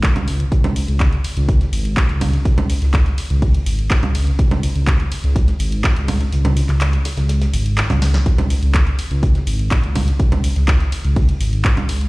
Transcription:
0.03 kick, snare, clap, closed hi-hat
0.16 C#2, closed hi-hat, low conga
0.28 closed hi-hat, open hi-hat
0.40 closed hi-hat
0.52 C#2, kick, closed hi-hat
0.64 snare, closed hi-hat, low conga
0.76 closed hi-hat, open hi-hat, ride
0.88 C#2, closed hi-hat
1.00 kick, snare, clap, closed hi-hat
1.13 closed hi-hat
1.24 closed hi-hat, open hi-hat, ride
1.37 C#2, closed hi-hat
1.49 kick, closed hi-hat
1.61 snare, closed hi-hat
1.73 G#1, closed hi-hat, open hi-hat, ride
1.85 closed hi-hat
1.97 kick, snare, clap, closed hi-hat
2.09 C#2, closed hi-hat
2.21 closed hi-hat, open hi-hat, ride, low conga
2.34 snare, closed hi-hat
2.45 C#2, kick, closed hi-hat
2.57 snare, closed hi-hat, low conga
2.70 closed hi-hat, open hi-hat, ride
2.82 C#2, snare, closed hi-hat
2.94 kick, snare, clap, closed hi-hat
3.06 snare, closed hi-hat
3.18 closed hi-hat, open hi-hat, ride
3.30 C#2, closed hi-hat
3.42 kick, closed hi-hat, open hi-hat
3.54 closed hi-hat
3.66 G#1, closed hi-hat, open hi-hat, ride
3.79 closed hi-hat
3.90 kick, snare, clap, closed hi-hat
4.03 C#2, closed hi-hat, low conga
4.14 closed hi-hat, open hi-hat, ride
4.27 closed hi-hat
4.39 C#2, kick, closed hi-hat
4.51 snare, closed hi-hat, low conga
4.63 closed hi-hat, open hi-hat, ride
4.76 C#2, closed hi-hat
4.87 kick, snare, clap, closed hi-hat
5.00 closed hi-hat
5.12 closed hi-hat, open hi-hat, ride
5.24 C#2, closed hi-hat
5.36 kick, closed hi-hat
5.48 snare, closed hi-hat
5.59 G#1, closed hi-hat, open hi-hat, ride
5.72 closed hi-hat
5.84 kick, snare, clap, closed hi-hat
5.96 C#2, closed hi-hat
6.08 closed hi-hat, open hi-hat, ride, low conga
6.20 snare, closed hi-hat
6.32 C#2, closed hi-hat
6.45 snare, closed hi-hat, low conga
6.57 closed hi-hat, open hi-hat, ride
6.69 C#2, snare, clap, closed hi-hat
6.81 snare, clap, closed hi-hat
6.93 snare, closed hi-hat
7.05 snare, closed hi-hat, open hi-hat, ride
7.17 C#2, snare, closed hi-hat
7.29 snare, closed hi-hat
7.41 snare, closed hi-hat
7.54 G#1, closed hi-hat, open hi-hat, ride
7.66 closed hi-hat
7.78 snare, clap, closed hi-hat
7.90 C#2, snare, closed hi-hat, low conga
8.02 snare, closed hi-hat, open hi-hat, ride
8.14 snare, closed hi-hat
8.26 C#2, kick, closed hi-hat
8.38 snare, closed hi-hat, low conga
8.50 closed hi-hat, open hi-hat, ride
8.63 C#2, closed hi-hat
8.74 kick, snare, clap, closed hi-hat
8.87 closed hi-hat
8.98 closed hi-hat, open hi-hat, ride
9.11 C#2, closed hi-hat
9.23 kick, closed hi-hat
9.35 snare, closed hi-hat
9.47 G#1, closed hi-hat, open hi-hat, ride
9.59 closed hi-hat
9.71 kick, snare, clap, closed hi-hat
9.84 C#2, closed hi-hat
9.96 closed hi-hat, open hi-hat, ride, low conga
10.07 snare, closed hi-hat
10.19 C#2, kick, closed hi-hat
10.31 snare, closed hi-hat, low conga
10.44 closed hi-hat, open hi-hat, ride
10.56 C#2, snare, closed hi-hat
10.68 kick, snare, clap, closed hi-hat
10.80 snare, closed hi-hat
10.92 closed hi-hat, open hi-hat, ride
11.05 C#2, closed hi-hat
11.16 kick, closed hi-hat, open hi-hat
11.29 closed hi-hat
11.41 G#1, closed hi-hat, open hi-hat, ride
11.53 closed hi-hat
11.64 kick, snare, clap, closed hi-hat
11.77 C#2, closed hi-hat, low conga
11.89 closed hi-hat, open hi-hat, ride
12.01 closed hi-hat

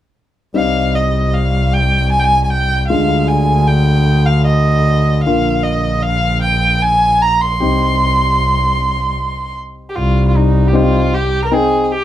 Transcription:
0.54 C2 G3 C4 D#4 F5
0.95 D#5
1.34 F5
1.73 G5
2.11 G#5
2.19 G5
2.24 G#5
2.44 G#5
2.50 G5
2.88 D2 D3 G#3 F4 F5
3.28 G#5
3.67 G5
4.26 F5
4.46 D#5
5.23 A#1 D3 A#3 F4 F5
5.63 D#5
6.03 F5
6.42 G5
6.82 G#5
7.22 A#5
7.41 C6
7.60 C2 C4 D#4 G4
9.89 G4
9.96 C2 F4
10.28 F4
10.37 D#4
10.68 G4
10.73 C4 D#4 F4 G4
11.14 G4
11.44 A#4
11.51 C4 D#4 G#4 G5
11.84 G#4
11.92 G4

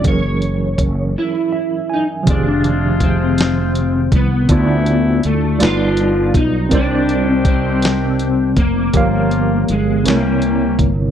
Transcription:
0.00 F#3 C#4
0.04 F#1 E3 G#4 A#4 C#5, kick, closed hi-hat
0.42 closed hi-hat
0.78 F#1, kick, closed hi-hat
1.18 E4
1.52 E5
1.90 D#4 G#5
2.23 C3 D#3 F3 G#3 F4, kick, closed hi-hat
2.28 F1 D4 G4 G#4
2.64 closed hi-hat
3.00 C4, kick, closed hi-hat
3.38 snare, closed hi-hat
3.75 closed hi-hat
4.12 C2 B3, kick, closed hi-hat
4.48 D2 C3 D3 E3 A3 D4 E4 F4 D5, kick, closed hi-hat
4.86 closed hi-hat
5.23 D2 A3, closed hi-hat
5.58 G1 B2 D3 F3 G3 D4 D#4 F4 B4 D5, closed hi-hat
5.63 F4, snare
5.97 closed hi-hat
6.34 B1 D#4, kick, closed hi-hat
6.67 C3 G3 C4 G4 A#4
6.71 C2 D#3 D4 C5 D5, kick, closed hi-hat
7.09 closed hi-hat
7.28 C4
7.45 C4, kick, closed hi-hat
7.82 snare, closed hi-hat
8.19 closed hi-hat
8.57 F1 A#3, kick, closed hi-hat
8.93 G1 C#3 F3 A#3 F4 G4 A#4 C#5, kick, closed hi-hat
8.97 F5
9.31 closed hi-hat
9.68 G1 G#3, closed hi-hat
10.03 C2 C3 E3 G3 C4 C#4 E4 G4 A#4 C#5, closed hi-hat
10.08 A#3, snare
10.42 closed hi-hat
10.79 G1, kick, closed hi-hat

